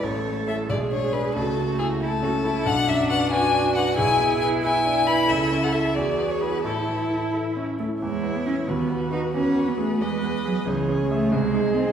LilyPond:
<<
  \new Staff \with { instrumentName = "Violin" } { \time 6/8 \key a \major \tempo 4. = 91 cis''4 e''8 d''8 cis''8 b'8 | a'4 gis'8 a'4. | fis''8 e''8 fis''8 gis''4 fis''8 | gis''4 gis''8 gis''4 b''8 |
e''8. fis''16 e''8 d''8. cis''16 b'8 | a'4. r4. | \key e \major cis''4. b'4. | b'4. dis''4. |
cis''4. bis'4. | }
  \new Staff \with { instrumentName = "Grand piano" } { \time 6/8 \key a \major a,,8 a8 <e' a'>8 b,,8 d'8 <d' gis'>8 | cis,8 cis8 <e' a'>8 <e' a'>8 cis'8 <e' a'>8 | b,,8 fis,8 <fis' b'>8 <fis' b'>8 d'8 <fis' b'>8 | b,,8 b,8 <e' b'>8 <e' b'>8 d'8 <e' b'>8 |
cis,8 cis'8 <e' a'>8 e,8 b8 <e' gis'>8 | a,8 e8 <e' a'>8 <e' a'>8 cis'8 <e' a'>8 | \key e \major e,8 b8 <e' b'>8 dis,8 b8 <fis' b'>8 | e,8 b8 gis'8 e,8 b8 gis'8 |
cis,8 cis'8 <gis' e''>8 bis,,8 dis'8 <gis' dis''>8 | }
  \new Staff \with { instrumentName = "Viola" } { \time 6/8 \key a \major a4. gis4. | a2. | d'2. | e'2. |
a'4. gis'4. | e'2~ e'8 r8 | \key e \major e'4. fis'4.~ | fis'4. b'4. |
gis'4. gis'4. | }
  \new Staff \with { instrumentName = "Cello" } { \time 6/8 \key a \major a'4. gis'4. | fis'4. e'8 fis'8 e'8 | d'4. fis'4. | gis'4. e'4.~ |
e'4. fis'4. | e'2~ e'16 r16 a8 | \key e \major gis8. b16 cis'8 b4 dis'8 | cis'8. b16 a8 gis4 fis8 |
e8. gis16 a8 gis4 bis8 | }
>>